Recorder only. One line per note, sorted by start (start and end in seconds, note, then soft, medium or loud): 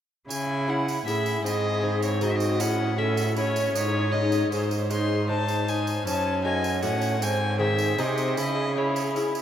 0.69 1.05 E4 medium
1.07 1.43 G#4 medium
1.43 2.19 G#4 medium
2.23 2.61 F#4 medium
2.59 2.97 E4 medium
2.98 3.36 A4 medium
3.37 4.50 C#5 medium
4.52 4.71 G#4 medium
4.92 6.08 C5 medium
6.07 6.47 C#5 medium
6.45 6.84 D#5 medium
6.82 7.21 C#5 medium
7.21 7.60 C5 medium
7.59 8.36 G#4 medium
8.36 9.32 G#4 medium